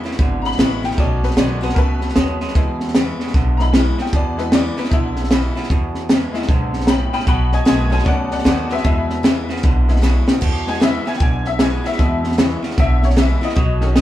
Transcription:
Already playing: E2 G#3 B3 E4
0.04 E2 C#3 B3 E4, snare
0.12 snare
0.19 G#1 E2 B2 D3, kick, snare
0.42 A#5, snare
0.46 B5
0.52 snare
0.58 A1 E2 C#3 E3 G#3 B3 E4, snare, hi-hat pedal
0.83 E2 C#3 B3 E4 G5, snare
0.91 snare
0.97 B1 B2 F#3 A3 C#4 D#4 D5, kick, snare
1.23 B4, snare
1.31 snare
1.36 B1 B2 D#3 G#3 A3 B3 F#4 D5, snare, hi-hat pedal
1.61 B2 G#3 B3 F#4 B4, snare
1.69 snare
1.74 C#2 B2 A3 A#4, kick, snare
1.78 B4
2.01 snare
2.09 snare
2.15 D#2 F#2 B2 G#3, snare, hi-hat pedal
2.40 B2 G#3, snare
2.48 snare
2.55 E2 B2 G#3 B3 E4, kick, snare
2.80 snare
2.88 snare
2.95 E2 C#3 E3 G#3 B3 E4, snare, hi-hat pedal
3.19 E2 C#3, snare
3.27 snare
3.34 B1 E2 B2 D3, kick, snare
3.57 G#3 B3 E4 A#5, snare
3.62 B5
3.73 E2 C#3 E3 G#3 B3 E4, snare, hi-hat pedal
3.98 E2 C#3 B3 E4 G5, snare
4.06 snare
4.13 E2 B2 D5, kick, snare
4.37 G#3 B3 E4 B4, snare
4.52 E2 C#3 E3 G#3 B3 E4 D5, snare, hi-hat pedal
4.77 E2 C#3 B3 E4 B4, snare
4.84 snare
4.89 B1 E2 B2 D3 D#4, kick, snare
4.93 E4
5.16 snare
5.24 snare
5.31 E2 C#3 E3 G#3 B3 E4, snare, hi-hat pedal
5.55 E2 C#3 B3 E4, snare
5.63 snare
5.70 E2 B2, kick, snare
5.95 snare
6.09 E2 C#3 E3 G#3 B3 E4, snare, hi-hat pedal
6.33 E2 C#3 G#3 B3 E4, snare
6.42 snare
6.49 B1 E2 G#2 D3, kick, snare
6.73 snare
6.81 snare
6.86 E2 A2 C#3 G5 A#5, snare, hi-hat pedal
6.90 B5
7.13 E2 C#3 G5 B5, snare
7.20 snare
7.27 B1 B2 F#3 F#5 B5, kick, snare
7.52 D#5 G#5, snare
7.65 B1 B2 D#3 G#3 A3 B3 F#4 D#5 G#5, snare, hi-hat pedal
7.90 B2 G#3 A3 B3 C#4 D#4 F#4 D#5 G#5, snare
7.99 snare
8.05 C#2 F#2 B2 A3 D5 F#5, kick, snare
8.31 D5 F#5, snare
8.38 snare
8.44 D#2 B2 D#3 G#3 A3 B3 F#4 D5 F#5, snare, hi-hat pedal
8.69 B2 G#3 B3 F#4 B4 E5, snare
8.77 snare
8.84 E2 B2 G#3 B3 E4, kick, snare
9.10 snare
9.23 E2 C#3 E3 G#3 B3 E4, snare, hi-hat pedal
9.49 E2 C#3 B3 E4, snare
9.57 snare
9.63 B1 E2 B2 D3, kick, snare
9.88 G#3 B3 E4, snare
9.96 snare
10.02 E2 C#3 E3 G#3 B3 E4, snare, hi-hat pedal
10.27 E2 C#3 B3 E4, snare
10.41 E2 B2, kick, snare, crash
10.66 E3 G#3 B3 G#5, snare
10.74 snare
10.80 E2 C#3 E3 G#3 B3 E4 E5, snare, hi-hat pedal
11.05 E2 C#3 B3 E4 G#5, snare
11.14 G5, snare
11.20 B1 E2 B2 D3 G#5, kick, snare
11.45 E5, snare
11.59 E2 C#3 E3 G#3 B3 E4 G#5, snare, hi-hat pedal
11.84 E2 C#3 B3 E4 E5, snare
11.92 snare
11.98 E2 B2 E3 G#3 B3, kick, snare
12.24 snare
12.32 snare
12.38 E2 C#3 E3 G#3 B3 E4, snare, hi-hat pedal
12.62 E2 C#3 B3 E4, snare
12.71 snare
12.77 B1 E2 B2 D3 E5, kick, snare
13.03 C#5, snare
13.10 snare
13.16 E2 C#3 E3 G#3 B3 E4 E5, snare, hi-hat pedal
13.41 E2 C#3 B3 E4 D#5, snare
13.49 snare
13.56 B1 B2 F#3, kick, snare
13.81 D#3 C#4 A4, snare
13.96 B2 D#3 G#3 A3 B3 F#4, snare, hi-hat pedal

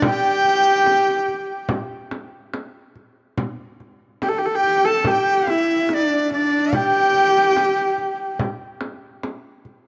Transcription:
0.02 G5, frame drum
0.07 G4
0.44 frame drum
0.86 frame drum
1.28 frame drum
1.69 frame drum
2.11 frame drum
2.54 frame drum
2.96 frame drum
3.38 frame drum
3.80 frame drum
4.22 G4, frame drum
4.29 A4
4.39 G4
4.46 A4
4.54 G4 G5
4.64 frame drum
4.85 A4 A5
5.04 G4 A5, frame drum
5.11 G5
5.47 E4 E5, frame drum
5.89 D4 E5, frame drum
5.94 D5
6.31 D4 D5, frame drum
6.73 G4 G5, frame drum
7.14 frame drum
7.56 frame drum
7.98 frame drum
8.39 frame drum
8.81 frame drum
9.23 frame drum
9.65 frame drum

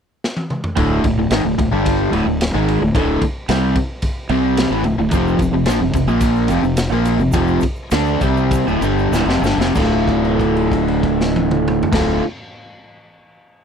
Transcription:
0.24 snare
0.37 high tom
0.50 mid tom
0.64 floor tom
0.76 D1 D2 A2 D3, kick, ride
1.04 D1 D2 A2, kick, ride
1.18 D1 D2 A2
1.31 G#1 G#2 D#3, snare, ride
1.45 D1 D2 A2
1.58 D1 D2 A2, kick, ride
1.72 G1 G2 D3 G3
1.86 kick, ride
2.12 D1 D2 A2, ride
2.26 D1 D2 A2
2.41 snare, ride
2.54 G#1 G#2 D#3 G#3
2.68 ride
2.81 D1 D2 A2
2.94 D1 D2 A2 D3, kick, ride
3.22 muted fingered electric bass stroke, muted overdriven electric guitar stroke, kick, ride
3.49 C2 C3 G3 C4, snare, ride
3.76 kick, ride
4.02 kick, ride
4.29 C2 C3 G3 C4, ride
4.57 snare, ride
4.70 A1 A2 E3
4.83 D1 D2 A2, ride
4.97 D1 D2 A2
5.11 F1 F2 C3 F3, kick, ride, shaker
5.28 shaker
5.39 F1 F2 C3, kick, ride, shaker
5.53 F1 F2 C3
5.66 A#1 A#2 F3, snare, ride, shaker
5.81 F1 F2 C3
5.93 F1 F2 C3, kick, ride, shaker
6.08 A#1 A#2 F3 A#3, shaker
6.21 kick, ride, shaker
6.36 shaker
6.48 F1 F2 C3, ride, shaker
6.62 F1 F2 C3, shaker
6.77 snare, ride, shaker
6.90 A#1 A#2 F3 A#3, shaker
7.05 ride, shaker
7.19 F1 F2 C3, shaker
7.32 F1 F2 C3 F3, kick, ride, shaker
7.47 shaker
7.60 muted fingered electric bass stroke, muted overdriven electric guitar stroke, kick, ride, shaker
7.75 shaker
7.91 D2 D3 A3 D4, snare, ride, shaker
8.06 shaker
8.21 C2 C3 G3 C4, kick, ride, shaker
8.37 shaker
8.51 kick, ride, shaker
8.66 D1 D2 A2, shaker
8.81 G1 G2 D3 G3, ride, shaker
8.98 shaker
9.12 D1 D2 A2, snare, shaker
9.26 F1 F2 C3, snare, shaker
9.42 G1 G2 D3, shaker
9.46 snare
9.58 F1 F2 C3, snare, shaker
9.75 D1 D2 A2 D3, kick, crash, shaker
9.79 A3 F4
10.08 kick, crash
10.25 crash
10.39 kick, crash
10.57 crash
10.72 kick, crash
10.88 crash
11.03 kick, crash
11.21 snare
11.36 high tom
11.51 mid tom
11.68 mid tom
11.83 floor tom
11.92 D1 D2 A2 D3 A3, kick, snare, crash
11.96 F4

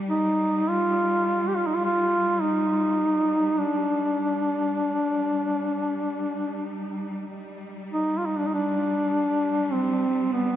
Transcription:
Already playing: G3
0.09 D#4
0.69 F4
1.48 G4
1.56 F4
1.67 D#4
1.76 F4
1.85 F4
2.42 D#4
3.59 D4
7.34 G3
7.93 D#4
8.18 F4
8.26 D#4
8.38 D4
8.47 D#4
8.54 D4
9.72 C4
10.32 B3

